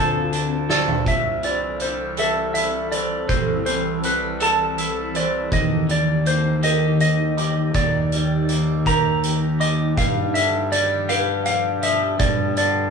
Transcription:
0.00 1.03 D2 medium
0.00 0.69 D3 medium
0.00 1.03 D3 medium
0.00 1.07 F3 medium
0.00 1.03 C4 medium
0.00 0.31 D4 medium
0.00 1.03 F4 medium
0.00 0.68 A4 medium
0.00 0.70 A4 medium
0.00 0.70 C5 medium
0.00 0.66 A5 medium
0.32 1.07 D4 medium
0.32 closed hi-hat soft
0.69 1.07 A4 medium
0.69 1.07 C5 medium
0.69 1.04 D5 medium
0.69 snare soft
0.88 floor tom medium
1.06 3.25 C2 medium
1.06 2.92 C3 medium
1.06 5.48 E3 medium
1.06 5.49 C4 medium
1.06 5.49 A4 medium
1.06 1.45 E5 medium
1.06 kick medium
1.06 closed hi-hat medium
1.43 2.91 E3 soft
1.43 2.18 C5 soft
1.43 1.82 D5 medium
1.43 closed hi-hat soft
1.80 4.04 G3 medium
1.80 2.16 C5 medium
1.80 closed hi-hat soft
2.17 2.92 A4 medium
2.17 4.04 A4 medium
2.17 2.53 E5 medium
2.17 closed hi-hat medium
2.54 4.41 E4 soft
2.54 2.89 E5 medium
2.54 closed hi-hat soft
2.92 3.66 E3 medium
2.92 3.29 C5 medium
2.92 3.28 D5 medium
2.92 closed hi-hat medium
3.29 5.48 C2 medium
3.29 5.15 C3 medium
3.29 3.65 C5 medium
3.29 kick medium
3.29 closed hi-hat medium
3.66 5.14 E3 soft
3.66 4.41 C4 medium
3.66 4.01 C5 medium
3.66 closed hi-hat soft
4.03 5.89 G3 medium
4.03 4.43 B4 medium
4.03 closed hi-hat soft
4.40 5.52 A4 medium
4.40 5.15 A4 medium
4.40 5.18 A5 medium
4.40 closed hi-hat medium
4.78 5.52 E4 medium
4.78 closed hi-hat medium
5.15 5.52 E3 medium
5.15 5.52 C5 medium
5.15 5.53 D5 medium
5.15 closed hi-hat soft
5.52 7.71 D#2 medium
5.52 9.93 D#3 medium
5.52 7.38 D#3 medium
5.52 9.93 D#4 medium
5.52 12.90 G4 medium
5.52 5.91 D#5 medium
5.52 kick medium
5.52 closed hi-hat medium
5.89 7.38 G3 soft
5.89 6.64 D5 medium
5.89 6.28 D5 medium
5.89 closed hi-hat soft
6.26 8.12 A#3 medium
6.26 6.61 C5 medium
6.26 closed hi-hat soft
6.63 8.87 G4 medium
6.63 7.38 A#4 medium
6.63 7.00 D#5 medium
6.63 closed hi-hat medium
7.00 7.74 D#5 medium
7.00 closed hi-hat soft
7.37 8.12 G3 medium
7.37 7.75 D6 medium
7.37 closed hi-hat soft
7.74 9.93 D#2 medium
7.74 9.61 D#3 medium
7.74 8.90 D5 medium
7.74 kick medium
7.74 closed hi-hat medium
8.12 9.60 G3 soft
8.12 8.86 D5 medium
8.12 closed hi-hat soft
8.49 9.98 A#3 medium
8.49 closed hi-hat soft
8.86 11.08 G4 medium
8.86 9.60 A#4 medium
8.86 9.63 A#5 medium
8.86 kick soft
8.86 closed hi-hat medium
9.24 closed hi-hat soft
9.60 10.72 G3 medium
9.60 9.99 D#5 medium
9.60 9.97 D6 medium
9.60 closed hi-hat medium
9.97 12.16 G2 medium
9.97 11.83 G2 medium
9.97 12.90 B2 medium
9.97 12.90 F3 medium
9.97 10.32 F5 medium
9.97 kick medium
9.97 closed hi-hat medium
10.34 12.21 D3 medium
10.34 11.09 D5 medium
10.34 10.69 E5 medium
10.34 closed hi-hat medium
10.72 12.57 G3 medium
10.72 11.10 D5 medium
10.72 closed hi-hat medium
11.09 12.90 G4 medium
11.09 11.83 B4 medium
11.09 11.45 F5 medium
11.09 closed hi-hat medium
11.46 11.81 F5 medium
11.46 closed hi-hat medium
11.83 12.90 F3 medium
11.83 12.20 D5 medium
11.83 12.21 E5 medium
11.83 closed hi-hat medium
12.19 12.90 G2 medium
12.19 12.54 D5 medium
12.19 kick medium
12.19 closed hi-hat medium
12.57 12.90 D3 medium
12.57 12.90 D5 medium
12.57 closed hi-hat soft

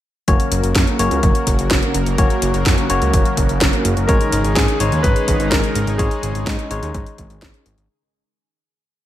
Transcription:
0.28 0.38 F#1 medium
0.28 7.86 C#3 medium
0.28 4.05 F#3 medium
0.28 4.05 A#3 medium
0.28 0.96 A#3 medium
0.28 0.96 C#4 medium
0.28 4.05 F#4 medium
0.28 0.96 F#4 medium
0.28 4.05 A#4 medium
0.28 0.96 C#5 loud
0.28 kick loud
0.28 closed hi-hat medium
0.40 closed hi-hat soft
0.52 0.62 F#1 medium
0.52 closed hi-hat loud
0.63 0.74 F#1 medium
0.63 closed hi-hat soft
0.75 0.86 F#2 loud
0.75 kick loud
0.75 snare loud
0.75 closed hi-hat medium
0.87 closed hi-hat soft
0.99 1.09 F#1 medium
0.99 2.16 A#3 medium
0.99 2.16 C#4 medium
0.99 2.16 F#4 medium
0.99 2.16 C#5 loud
0.99 closed hi-hat medium
1.11 1.21 C#2 medium
1.11 closed hi-hat soft
1.23 1.33 F#1 loud
1.23 kick loud
1.23 closed hi-hat medium
1.35 closed hi-hat soft
1.47 1.57 F#1 medium
1.47 kick medium
1.47 closed hi-hat medium
1.59 1.69 F#1 medium
1.59 closed hi-hat soft
1.71 1.81 F#1 loud
1.71 kick loud
1.71 snare loud
1.71 closed hi-hat medium
1.83 closed hi-hat soft
1.94 2.05 F#1 medium
1.94 closed hi-hat medium
2.06 2.17 F#1 medium
2.06 closed hi-hat soft
2.18 2.28 F#1 loud
2.18 2.87 A#3 medium
2.18 2.87 C#4 medium
2.18 2.87 F#4 medium
2.18 2.87 C#5 loud
2.18 kick loud
2.18 closed hi-hat medium
2.30 closed hi-hat soft
2.42 2.52 F#1 medium
2.42 closed hi-hat medium
2.54 2.64 F#1 medium
2.54 closed hi-hat soft
2.66 2.76 F#2 loud
2.66 kick loud
2.66 snare loud
2.66 closed hi-hat medium
2.78 closed hi-hat soft
2.90 3.00 F#1 medium
2.90 4.06 A#3 medium
2.90 4.06 C#4 medium
2.90 4.06 F#4 medium
2.90 4.06 C#5 loud
2.90 closed hi-hat medium
3.02 3.12 C#2 medium
3.02 closed hi-hat soft
3.14 3.24 F#1 loud
3.14 kick loud
3.14 closed hi-hat medium
3.25 closed hi-hat soft
3.37 3.47 F#1 medium
3.37 kick medium
3.37 closed hi-hat medium
3.49 3.59 F#1 medium
3.49 closed hi-hat soft
3.61 3.71 F#1 loud
3.61 kick loud
3.61 snare loud
3.61 closed hi-hat medium
3.73 closed hi-hat soft
3.85 3.95 F#1 medium
3.85 closed hi-hat medium
3.97 4.07 F#1 medium
3.97 closed hi-hat soft
4.07 4.19 G#1 loud
4.07 7.86 D#3 medium
4.07 7.86 G#3 medium
4.07 4.77 G#3 loud
4.07 4.77 C#4 medium
4.07 7.86 D#4 medium
4.07 4.77 D#4 medium
4.07 7.86 G#4 medium
4.07 4.57 A#4 loud
4.07 4.77 C#5 loud
4.07 kick loud
4.07 closed hi-hat medium
4.21 closed hi-hat soft
4.32 4.43 G#1 loud
4.32 closed hi-hat medium
4.44 4.55 G#1 medium
4.44 closed hi-hat soft
4.55 4.67 G#2 loud
4.55 5.05 G#4 loud
4.55 kick loud
4.55 snare loud
4.55 closed hi-hat medium
4.68 closed hi-hat soft
4.80 4.90 G#1 medium
4.80 5.96 G#3 medium
4.80 5.96 C#4 medium
4.80 5.96 D#4 medium
4.80 5.96 C#5 loud
4.80 closed hi-hat medium
4.92 5.02 D#2 medium
4.92 closed hi-hat soft
5.03 5.14 G#1 loud
5.03 5.48 B4 loud
5.03 kick loud
5.03 closed hi-hat medium
5.16 closed hi-hat soft
5.28 5.38 G#1 medium
5.28 kick medium
5.28 closed hi-hat medium
5.40 5.50 G#1 medium
5.40 closed hi-hat soft
5.50 5.62 G#1 loud
5.50 6.00 A#4 loud
5.50 kick loud
5.50 snare loud
5.50 closed hi-hat medium
5.64 closed hi-hat soft
5.75 5.86 G#1 medium
5.75 closed hi-hat medium
5.87 5.97 G#1 medium
5.87 closed hi-hat soft
5.98 6.09 G#1 loud
5.98 6.68 G#3 loud
5.98 6.68 C#4 medium
5.98 6.68 D#4 medium
5.98 6.43 G#4 loud
5.98 6.68 C#5 loud
5.98 kick loud
5.98 closed hi-hat medium
6.11 closed hi-hat soft
6.23 6.33 G#1 medium
6.23 closed hi-hat medium
6.35 6.45 G#1 medium
6.35 closed hi-hat soft
6.46 6.57 G#2 loud
6.46 7.14 D#4 medium
6.46 kick loud
6.46 snare loud
6.46 closed hi-hat medium
6.59 closed hi-hat soft
6.71 6.81 G#1 medium
6.71 7.87 G#3 medium
6.71 7.87 C#4 medium
6.71 7.87 D#4 medium
6.71 7.87 C#5 loud
6.71 closed hi-hat medium
6.82 6.93 D#2 medium
6.82 closed hi-hat soft
6.95 7.05 G#1 loud
6.95 kick loud
6.95 closed hi-hat medium
7.06 closed hi-hat soft
7.18 7.28 G#1 medium
7.18 kick medium
7.18 closed hi-hat medium
7.30 7.40 G#1 medium
7.30 closed hi-hat soft
7.42 7.52 G#1 loud
7.42 kick loud
7.42 snare loud
7.42 closed hi-hat medium
7.54 closed hi-hat soft
7.66 7.76 G#1 medium
7.66 closed hi-hat medium
7.78 7.88 G#1 medium
7.78 closed hi-hat soft

